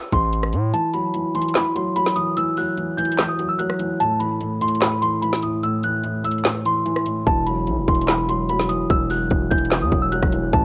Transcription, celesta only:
0, 0, Header, 1, 2, 480
1, 0, Start_track
1, 0, Tempo, 408163
1, 867, Time_signature, 4, 2, 24, 8
1, 12523, End_track
2, 0, Start_track
2, 0, Title_t, "Celesta"
2, 0, Program_c, 0, 8
2, 0, Note_on_c, 0, 88, 85
2, 121, Note_off_c, 0, 88, 0
2, 151, Note_on_c, 0, 84, 83
2, 826, Note_off_c, 0, 84, 0
2, 866, Note_on_c, 0, 81, 92
2, 1076, Note_off_c, 0, 81, 0
2, 1101, Note_on_c, 0, 83, 74
2, 1555, Note_off_c, 0, 83, 0
2, 1590, Note_on_c, 0, 84, 80
2, 1798, Note_off_c, 0, 84, 0
2, 1831, Note_on_c, 0, 83, 77
2, 2039, Note_off_c, 0, 83, 0
2, 2073, Note_on_c, 0, 84, 74
2, 2279, Note_off_c, 0, 84, 0
2, 2305, Note_on_c, 0, 83, 86
2, 2515, Note_off_c, 0, 83, 0
2, 2537, Note_on_c, 0, 87, 79
2, 2750, Note_off_c, 0, 87, 0
2, 2788, Note_on_c, 0, 88, 101
2, 2997, Note_off_c, 0, 88, 0
2, 3029, Note_on_c, 0, 90, 82
2, 3479, Note_off_c, 0, 90, 0
2, 3497, Note_on_c, 0, 91, 83
2, 3840, Note_off_c, 0, 91, 0
2, 3864, Note_on_c, 0, 87, 78
2, 4075, Note_off_c, 0, 87, 0
2, 4102, Note_on_c, 0, 88, 80
2, 4209, Note_off_c, 0, 88, 0
2, 4219, Note_on_c, 0, 90, 87
2, 4674, Note_off_c, 0, 90, 0
2, 4706, Note_on_c, 0, 81, 101
2, 4915, Note_off_c, 0, 81, 0
2, 4935, Note_on_c, 0, 83, 75
2, 5392, Note_off_c, 0, 83, 0
2, 5430, Note_on_c, 0, 84, 90
2, 5638, Note_off_c, 0, 84, 0
2, 5669, Note_on_c, 0, 83, 86
2, 5877, Note_off_c, 0, 83, 0
2, 5902, Note_on_c, 0, 84, 83
2, 6113, Note_off_c, 0, 84, 0
2, 6139, Note_on_c, 0, 83, 78
2, 6351, Note_off_c, 0, 83, 0
2, 6386, Note_on_c, 0, 87, 81
2, 6596, Note_off_c, 0, 87, 0
2, 6626, Note_on_c, 0, 88, 91
2, 6835, Note_off_c, 0, 88, 0
2, 6867, Note_on_c, 0, 90, 73
2, 7318, Note_off_c, 0, 90, 0
2, 7350, Note_on_c, 0, 88, 85
2, 7799, Note_off_c, 0, 88, 0
2, 7832, Note_on_c, 0, 84, 83
2, 8506, Note_off_c, 0, 84, 0
2, 8545, Note_on_c, 0, 81, 94
2, 8755, Note_off_c, 0, 81, 0
2, 8780, Note_on_c, 0, 83, 76
2, 9234, Note_off_c, 0, 83, 0
2, 9272, Note_on_c, 0, 84, 75
2, 9479, Note_off_c, 0, 84, 0
2, 9513, Note_on_c, 0, 83, 77
2, 9719, Note_off_c, 0, 83, 0
2, 9754, Note_on_c, 0, 84, 74
2, 9960, Note_off_c, 0, 84, 0
2, 9990, Note_on_c, 0, 83, 85
2, 10198, Note_off_c, 0, 83, 0
2, 10220, Note_on_c, 0, 87, 85
2, 10432, Note_off_c, 0, 87, 0
2, 10472, Note_on_c, 0, 88, 105
2, 10679, Note_off_c, 0, 88, 0
2, 10709, Note_on_c, 0, 90, 82
2, 11159, Note_off_c, 0, 90, 0
2, 11179, Note_on_c, 0, 91, 83
2, 11521, Note_off_c, 0, 91, 0
2, 11548, Note_on_c, 0, 87, 83
2, 11757, Note_off_c, 0, 87, 0
2, 11783, Note_on_c, 0, 88, 80
2, 11889, Note_off_c, 0, 88, 0
2, 11901, Note_on_c, 0, 90, 87
2, 12355, Note_off_c, 0, 90, 0
2, 12385, Note_on_c, 0, 81, 104
2, 12523, Note_off_c, 0, 81, 0
2, 12523, End_track
0, 0, End_of_file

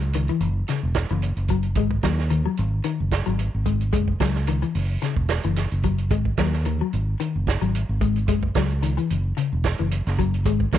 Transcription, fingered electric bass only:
0, 0, Header, 1, 2, 480
1, 0, Start_track
1, 0, Tempo, 542495
1, 1567, Time_signature, 4, 2, 24, 8
1, 9543, End_track
2, 0, Start_track
2, 0, Title_t, "Fingered electric bass"
2, 0, Program_c, 0, 33
2, 0, Note_on_c, 0, 37, 83
2, 255, Note_off_c, 0, 37, 0
2, 358, Note_on_c, 0, 30, 79
2, 547, Note_off_c, 0, 30, 0
2, 736, Note_on_c, 0, 28, 79
2, 922, Note_off_c, 0, 28, 0
2, 979, Note_on_c, 0, 30, 86
2, 1163, Note_off_c, 0, 30, 0
2, 1209, Note_on_c, 0, 30, 81
2, 1557, Note_off_c, 0, 30, 0
2, 1557, Note_on_c, 0, 32, 102
2, 1747, Note_off_c, 0, 32, 0
2, 1803, Note_on_c, 0, 39, 81
2, 2175, Note_off_c, 0, 39, 0
2, 2290, Note_on_c, 0, 32, 86
2, 2474, Note_off_c, 0, 32, 0
2, 2657, Note_on_c, 0, 30, 73
2, 2842, Note_off_c, 0, 30, 0
2, 2895, Note_on_c, 0, 32, 79
2, 3081, Note_off_c, 0, 32, 0
2, 3137, Note_on_c, 0, 32, 81
2, 3477, Note_off_c, 0, 32, 0
2, 3477, Note_on_c, 0, 30, 100
2, 3666, Note_off_c, 0, 30, 0
2, 3719, Note_on_c, 0, 37, 76
2, 4093, Note_off_c, 0, 37, 0
2, 4204, Note_on_c, 0, 30, 82
2, 4390, Note_off_c, 0, 30, 0
2, 4568, Note_on_c, 0, 28, 69
2, 4756, Note_off_c, 0, 28, 0
2, 4817, Note_on_c, 0, 30, 84
2, 5002, Note_off_c, 0, 30, 0
2, 5060, Note_on_c, 0, 30, 78
2, 5406, Note_off_c, 0, 30, 0
2, 5406, Note_on_c, 0, 32, 94
2, 5592, Note_off_c, 0, 32, 0
2, 5647, Note_on_c, 0, 39, 79
2, 6018, Note_off_c, 0, 39, 0
2, 6137, Note_on_c, 0, 32, 82
2, 6319, Note_off_c, 0, 32, 0
2, 6508, Note_on_c, 0, 30, 67
2, 6689, Note_off_c, 0, 30, 0
2, 6738, Note_on_c, 0, 32, 76
2, 6923, Note_off_c, 0, 32, 0
2, 6982, Note_on_c, 0, 32, 78
2, 7324, Note_off_c, 0, 32, 0
2, 7324, Note_on_c, 0, 30, 92
2, 7512, Note_off_c, 0, 30, 0
2, 7568, Note_on_c, 0, 37, 82
2, 7940, Note_off_c, 0, 37, 0
2, 8059, Note_on_c, 0, 30, 78
2, 8241, Note_off_c, 0, 30, 0
2, 8429, Note_on_c, 0, 28, 69
2, 8611, Note_off_c, 0, 28, 0
2, 8670, Note_on_c, 0, 30, 78
2, 8852, Note_off_c, 0, 30, 0
2, 8909, Note_on_c, 0, 30, 85
2, 9249, Note_off_c, 0, 30, 0
2, 9249, Note_on_c, 0, 32, 100
2, 9436, Note_off_c, 0, 32, 0
2, 9496, Note_on_c, 0, 39, 78
2, 9543, Note_off_c, 0, 39, 0
2, 9543, End_track
0, 0, End_of_file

